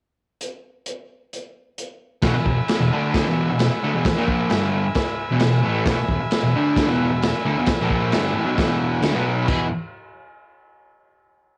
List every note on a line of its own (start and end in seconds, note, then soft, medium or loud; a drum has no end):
0.41 closed hi-hat medium
0.86 closed hi-hat medium
1.33 closed hi-hat medium
1.78 closed hi-hat medium
2.22 2.33 E2 medium
2.22 2.34 B2 loud
2.22 5.84 E5 medium
2.22 5.83 B5 medium
2.22 kick loud
2.22 snare loud
2.22 crash medium
2.26 5.84 G#5 medium
2.35 muted distorted electric guitar stroke medium
2.45 2.57 E2 medium
2.45 2.57 B2 medium
2.45 kick medium
2.58 muted distorted electric guitar stroke medium
2.68 snare loud
2.68 crash medium
2.80 2.92 E2 medium
2.80 2.92 B2 medium
2.92 3.25 D3 medium
2.92 3.26 A3 loud
2.92 3.26 D4 loud
3.14 kick loud
3.14 snare loud
3.14 crash medium
3.26 3.48 E2 medium
3.26 3.48 B2 loud
3.26 3.49 E3 loud
3.51 3.68 E2 medium
3.51 3.68 B2 medium
3.59 snare loud
3.59 crash medium
3.83 3.94 D3 medium
3.83 3.94 A3 loud
3.94 4.05 E2 medium
3.94 4.05 B2 loud
4.05 muted distorted electric guitar stroke medium
4.05 kick loud
4.05 snare loud
4.05 crash medium
4.17 4.50 A#2 loud
4.17 4.50 F3 medium
4.17 4.51 A#3 loud
4.28 kick medium
4.50 4.84 G2 loud
4.50 4.84 D3 loud
4.50 4.85 G3 loud
4.50 snare loud
4.50 crash medium
4.95 kick loud
4.95 snare loud
4.95 crash medium
5.31 5.40 E2 loud
5.31 5.41 B2 loud
5.39 5.60 E2 medium
5.39 5.60 B2 medium
5.39 snare loud
5.39 crash medium
5.63 5.85 A2 loud
5.63 5.86 E3 loud
5.63 5.86 A3 loud
5.86 5.95 E2 loud
5.86 5.98 B2 loud
5.86 kick loud
5.86 snare loud
5.86 crash medium
5.90 8.80 E5 medium
5.90 9.01 G#5 medium
5.90 9.47 B5 medium
5.96 muted distorted electric guitar stroke medium
6.08 6.18 E2 medium
6.08 6.21 B2 medium
6.08 kick medium
6.20 muted distorted electric guitar stroke medium
6.31 snare loud
6.31 crash medium
6.43 6.55 E2 medium
6.43 6.55 B2 medium
6.55 6.87 D3 medium
6.55 6.88 A3 loud
6.55 6.89 D4 loud
6.76 kick loud
6.76 snare loud
6.76 crash medium
6.87 7.10 E2 medium
6.87 7.10 B2 medium
6.87 7.11 E3 loud
7.12 7.30 E2 medium
7.12 7.30 B2 medium
7.22 snare loud
7.22 crash medium
7.45 7.56 D3 medium
7.45 7.56 A3 loud
7.58 7.68 E2 medium
7.58 7.68 B2 loud
7.66 muted distorted electric guitar stroke medium
7.66 kick loud
7.66 snare loud
7.66 crash medium
7.81 8.14 A#2 medium
7.81 8.14 F3 medium
7.81 8.14 A#3 loud
7.90 kick medium
8.12 8.36 G2 medium
8.12 8.34 D3 loud
8.12 8.35 G3 loud
8.12 snare loud
8.12 crash medium
8.34 8.45 A2 loud
8.34 8.46 E3 medium
8.46 8.55 B2 medium
8.46 8.57 F#3 loud
8.56 9.02 E2 medium
8.56 9.01 B2 loud
8.56 9.02 E3 loud
8.56 kick loud
8.56 snare loud
8.56 crash medium
8.81 8.92 E5 medium
8.92 9.03 F#5 medium
9.02 9.13 D3 medium
9.02 9.14 A3 loud
9.02 9.44 G#5 medium
9.02 snare loud
9.02 crash medium
9.13 9.47 B2 medium
9.13 9.48 F#3 medium
9.13 9.48 B3 loud
9.45 9.66 E2 loud
9.45 9.67 E3 loud
9.45 9.68 B4 medium
9.45 9.68 E5 medium
9.45 9.68 G#5 loud
9.45 kick loud
9.45 crash loud
9.49 9.67 B2 loud